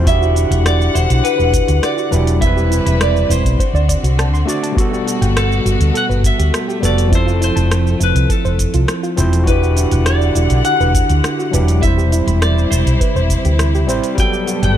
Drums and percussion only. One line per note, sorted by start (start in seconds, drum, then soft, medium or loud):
0.06 kick loud
0.06 closed hi-hat medium
0.06 shaker soft
0.23 shaker soft
0.36 closed hi-hat soft
0.36 shaker medium
0.52 closed hi-hat soft
0.52 shaker soft
0.66 cross-stick loud
0.66 closed hi-hat medium
0.66 shaker soft
0.81 shaker soft
0.95 closed hi-hat soft
0.95 shaker medium
1.10 closed hi-hat soft
1.10 shaker soft
1.25 closed hi-hat medium
1.25 shaker soft
1.40 shaker soft
1.53 kick loud
1.53 closed hi-hat medium
1.53 shaker medium
1.68 closed hi-hat soft
1.68 shaker soft
1.83 cross-stick medium
1.83 closed hi-hat medium
1.83 shaker soft
1.98 shaker soft
2.13 shaker medium
2.27 closed hi-hat soft
2.27 shaker soft
2.41 kick loud
2.41 closed hi-hat medium
2.41 shaker soft
2.58 shaker soft
2.72 closed hi-hat soft
2.72 shaker medium
2.87 closed hi-hat soft
2.87 shaker soft
3.01 cross-stick loud
3.01 closed hi-hat medium
3.01 shaker soft
3.17 shaker soft
3.30 closed hi-hat soft
3.30 shaker medium
3.45 kick medium
3.45 closed hi-hat soft
3.45 shaker soft
3.59 kick loud
3.59 closed hi-hat medium
3.59 shaker soft
3.76 shaker soft
3.89 kick medium
3.89 closed hi-hat medium
3.89 shaker medium
4.04 closed hi-hat soft
4.04 shaker soft
4.19 cross-stick loud
4.19 closed hi-hat medium
4.19 shaker soft
4.35 shaker soft
4.48 closed hi-hat soft
4.48 shaker medium
4.64 closed hi-hat soft
4.64 shaker soft
4.77 kick loud
4.77 closed hi-hat medium
4.77 shaker soft
4.94 shaker soft
5.08 closed hi-hat soft
5.08 shaker medium
5.22 closed hi-hat soft
5.22 shaker soft
5.37 cross-stick loud
5.37 closed hi-hat medium
5.37 shaker soft
5.52 shaker soft
5.66 closed hi-hat soft
5.66 shaker medium
5.81 closed hi-hat medium
5.81 shaker soft
5.95 closed hi-hat medium
5.95 shaker soft
6.11 shaker soft
6.24 kick loud
6.24 closed hi-hat medium
6.24 shaker medium
6.40 closed hi-hat soft
6.40 shaker soft
6.54 cross-stick loud
6.54 closed hi-hat medium
6.54 shaker soft
6.70 shaker soft
6.83 closed hi-hat soft
6.83 shaker medium
6.98 closed hi-hat soft
6.98 shaker soft
7.12 kick loud
7.12 closed hi-hat medium
7.12 shaker soft
7.28 shaker soft
7.42 closed hi-hat soft
7.42 shaker medium
7.57 closed hi-hat soft
7.57 shaker soft
7.71 cross-stick loud
7.71 closed hi-hat medium
7.71 shaker soft
7.87 shaker soft
8.01 closed hi-hat soft
8.01 shaker medium
8.16 closed hi-hat soft
8.16 shaker soft
8.29 kick loud
8.29 closed hi-hat medium
8.29 shaker soft
8.45 shaker soft
8.59 kick medium
8.59 closed hi-hat medium
8.59 shaker medium
8.74 closed hi-hat soft
8.74 shaker soft
8.88 cross-stick loud
8.88 closed hi-hat medium
8.88 shaker soft
9.04 shaker soft
9.17 closed hi-hat soft
9.17 shaker medium
9.33 closed hi-hat soft
9.33 shaker soft
9.47 kick loud
9.47 closed hi-hat medium
9.47 shaker soft
9.63 shaker soft
9.77 closed hi-hat soft
9.77 shaker medium
9.91 closed hi-hat soft
9.91 shaker soft
10.06 cross-stick loud
10.06 closed hi-hat medium
10.06 shaker soft
10.22 shaker soft
10.35 closed hi-hat soft
10.35 shaker medium
10.50 closed hi-hat soft
10.50 shaker soft
10.65 closed hi-hat medium
10.65 shaker soft
10.81 shaker soft
10.94 kick loud
10.94 closed hi-hat medium
10.94 shaker medium
11.10 closed hi-hat soft
11.10 shaker soft
11.24 cross-stick loud
11.24 closed hi-hat medium
11.24 shaker soft
11.40 shaker soft
11.53 closed hi-hat soft
11.53 shaker medium
11.68 closed hi-hat soft
11.68 shaker soft
11.83 kick loud
11.83 closed hi-hat medium
11.83 shaker soft
11.99 shaker soft
12.12 closed hi-hat soft
12.12 shaker medium
12.28 closed hi-hat soft
12.28 shaker soft
12.42 cross-stick loud
12.42 closed hi-hat medium
12.42 shaker soft
12.58 shaker soft
12.72 closed hi-hat soft
12.72 shaker medium
12.87 closed hi-hat soft
12.87 shaker soft
13.01 kick loud
13.01 closed hi-hat medium
13.01 shaker soft
13.16 shaker soft
13.30 kick medium
13.30 closed hi-hat soft
13.30 shaker medium
13.45 closed hi-hat soft
13.45 shaker soft
13.59 cross-stick loud
13.59 closed hi-hat soft
13.59 shaker soft
13.75 shaker soft
13.89 closed hi-hat soft
13.89 shaker medium
14.04 closed hi-hat soft
14.04 shaker soft
14.18 kick loud
14.18 closed hi-hat medium
14.18 shaker soft
14.34 shaker soft
14.47 closed hi-hat soft
14.47 shaker medium
14.63 closed hi-hat soft
14.63 shaker soft